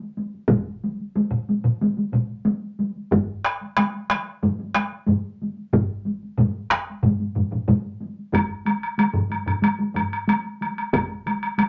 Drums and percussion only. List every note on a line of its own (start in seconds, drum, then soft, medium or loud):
0.01 taiko high soft
0.17 taiko high soft
0.34 taiko high soft
0.48 taiko loud
0.48 taiko mid medium
0.48 taiko high medium
0.68 taiko high soft
0.84 taiko high medium
1.00 taiko high soft
1.16 taiko high medium
1.31 taiko mid medium
1.49 taiko high medium
1.64 taiko mid medium
1.64 taiko high soft
1.81 taiko high medium
1.97 taiko high soft
2.13 taiko mid medium
2.13 taiko high soft
2.30 taiko high soft
2.45 taiko high medium
2.62 taiko high soft
2.79 taiko high medium
2.96 taiko high soft
3.12 taiko loud
3.12 taiko low-mid medium
3.12 taiko high medium
3.45 taiko rim medium
3.61 taiko high soft
3.77 taiko rim medium
3.77 taiko high medium
3.94 taiko high soft
4.10 taiko rim medium
4.10 taiko high soft
4.43 taiko low-mid medium
4.43 taiko high medium
4.59 taiko high soft
4.75 taiko rim medium
4.75 taiko high soft
4.91 taiko high soft
5.07 taiko low-mid medium
5.07 taiko high medium
5.25 taiko high soft
5.42 taiko high soft
5.57 taiko high soft
5.73 taiko loud
5.73 taiko low-mid medium
5.73 taiko mid medium
5.73 taiko high medium
5.90 taiko high soft
6.06 taiko high soft
6.23 taiko high soft
6.38 taiko low-mid loud
6.38 taiko mid medium
6.38 taiko high medium
6.70 taiko rim medium
6.70 taiko medium
6.89 taiko high soft
7.03 taiko low-mid medium
7.03 taiko mid loud
7.03 taiko high medium
7.20 taiko high soft
7.35 taiko low-mid medium
7.35 taiko mid medium
7.35 taiko high soft
7.51 taiko low-mid medium
7.51 taiko mid medium
7.51 taiko high soft
7.68 taiko low-mid loud
7.68 taiko mid medium
7.68 taiko high medium
7.84 taiko high soft
8.01 taiko high soft
8.18 taiko high soft
8.32 taiko medium
8.32 taiko low-mid medium
8.32 taiko high medium
8.32 high woodblock medium
8.49 taiko high soft
8.65 taiko high soft
8.65 high woodblock soft
8.82 taiko high soft
8.82 high woodblock soft
8.98 taiko high medium
8.98 high woodblock medium
9.14 taiko low-mid medium
9.14 taiko high soft
9.30 taiko high soft
9.30 high woodblock soft
9.46 taiko low-mid medium
9.46 taiko high soft
9.46 high woodblock soft
9.62 taiko high medium
9.62 high woodblock medium
9.79 taiko high soft
9.94 taiko low-mid medium
9.94 taiko high soft
9.94 high woodblock soft
10.12 taiko high soft
10.12 high woodblock soft
10.28 taiko high medium
10.28 high woodblock medium
10.44 taiko high soft
10.61 taiko high soft
10.61 high woodblock soft
10.78 taiko high soft
10.78 high woodblock soft
10.93 taiko loud
10.93 taiko mid medium
10.93 taiko high medium
10.93 high woodblock medium
11.10 taiko high soft
11.26 taiko high medium
11.26 high woodblock soft
11.43 taiko high soft
11.43 high woodblock soft
11.58 taiko high medium
11.58 high woodblock medium